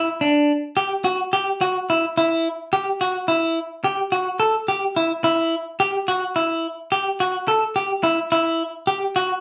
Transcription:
0.21 D4
0.77 G4
1.04 F#4
1.33 G4
1.61 F#4
1.90 E4
2.18 E4
2.73 G4
3.01 F#4
3.28 E4
3.84 G4
4.12 F#4
4.40 A4
4.68 G4
4.96 E4
5.24 E4
5.80 G4
6.08 F#4
6.36 E4
6.92 G4
7.20 F#4
7.48 A4
7.76 G4
8.03 E4
8.32 E4
8.87 G4
9.16 F#4

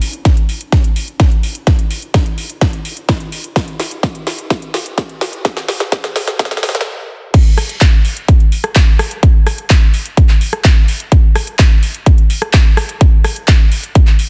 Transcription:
0.02 open hi-hat
0.13 closed hi-hat
0.25 kick, snare, closed hi-hat
0.37 closed hi-hat
0.49 open hi-hat
0.61 closed hi-hat
0.72 kick, snare, closed hi-hat
0.84 closed hi-hat
0.96 open hi-hat
1.08 closed hi-hat
1.20 kick, snare, closed hi-hat
1.32 closed hi-hat
1.43 open hi-hat
1.55 closed hi-hat
1.67 kick, snare, closed hi-hat
1.79 closed hi-hat
1.91 open hi-hat
2.02 closed hi-hat
2.14 kick, snare, closed hi-hat
2.26 closed hi-hat
2.38 open hi-hat
2.50 closed hi-hat
2.61 kick, snare, closed hi-hat
2.73 closed hi-hat
2.85 open hi-hat
2.97 closed hi-hat
3.09 kick, snare, closed hi-hat
3.20 closed hi-hat
3.32 open hi-hat
3.44 closed hi-hat
3.56 kick, snare, closed hi-hat
3.68 closed hi-hat
3.80 snare, open hi-hat
3.91 closed hi-hat
4.03 kick, snare, closed hi-hat
4.15 closed hi-hat
4.27 snare, open hi-hat
4.39 closed hi-hat
4.50 kick, snare, closed hi-hat
4.62 closed hi-hat
4.74 snare, open hi-hat
4.86 closed hi-hat
4.98 kick, snare, closed hi-hat
5.09 closed hi-hat
5.21 snare, open hi-hat
5.33 closed hi-hat
5.45 kick, snare, closed hi-hat
5.57 snare, closed hi-hat
5.68 snare, open hi-hat
5.80 snare, closed hi-hat
5.92 kick, snare, closed hi-hat
6.04 snare, closed hi-hat
6.16 snare, open hi-hat
6.28 snare, closed hi-hat
6.39 kick, snare, closed hi-hat
6.45 snare
6.51 snare, closed hi-hat
6.57 snare
6.63 snare, open hi-hat
6.69 snare
6.75 snare, closed hi-hat
6.81 snare
7.34 kick, closed hi-hat, crash
7.58 cross-stick, open hi-hat
7.69 closed hi-hat
7.81 kick, clap, closed hi-hat
8.05 open hi-hat
8.17 closed hi-hat
8.28 kick, closed hi-hat
8.40 closed hi-hat
8.52 open hi-hat
8.64 cross-stick, closed hi-hat
8.75 kick, clap, closed hi-hat
8.99 cross-stick, open hi-hat
9.11 closed hi-hat
9.23 kick, closed hi-hat
9.47 cross-stick, open hi-hat
9.58 closed hi-hat
9.70 kick, clap, closed hi-hat
9.94 open hi-hat
10.06 closed hi-hat
10.17 kick, closed hi-hat
10.29 clap, closed hi-hat
10.41 open hi-hat
10.53 cross-stick, closed hi-hat
10.64 kick, clap, closed hi-hat
10.88 open hi-hat
11.00 closed hi-hat
11.12 kick, closed hi-hat
11.35 cross-stick, open hi-hat
11.47 closed hi-hat
11.59 kick, clap, closed hi-hat
11.83 open hi-hat
11.94 closed hi-hat
12.06 kick, closed hi-hat
12.18 closed hi-hat
12.30 open hi-hat
12.42 cross-stick, closed hi-hat
12.53 kick, clap, closed hi-hat
12.77 cross-stick, open hi-hat
12.89 closed hi-hat
13.01 kick, closed hi-hat
13.24 cross-stick, open hi-hat
13.36 closed hi-hat
13.48 kick, clap, closed hi-hat
13.72 open hi-hat
13.83 closed hi-hat
13.95 kick, closed hi-hat
14.07 clap, closed hi-hat
14.19 open hi-hat

